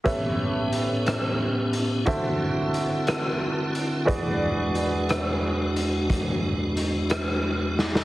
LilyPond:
<<
  \new Staff \with { instrumentName = "Upright piano" } { \time 12/8 \key a \major \tempo 4. = 60 <a g' b' cis'' e''>2. <d fis' a' c'' e''>2. | <e fis' gis' b' d''>1. | }
  \new Staff \with { instrumentName = "Tonewheel organ" } { \time 12/8 \key a \major <a, b cis' g'>2. <d c' e' fis'>2. | <e, gis d' fis'>1. | }
  \new DrumStaff \with { instrumentName = "Drums" } \drummode { \time 12/8 <hh bd>4 hh8 <hh ss>4 hh8 <hh bd>4 hh8 <hh ss>4 hh8 | <hh bd>4 hh8 <hh ss>4 hh8 <hh bd>4 hh8 <hh ss>4 sn16 sn16 | }
>>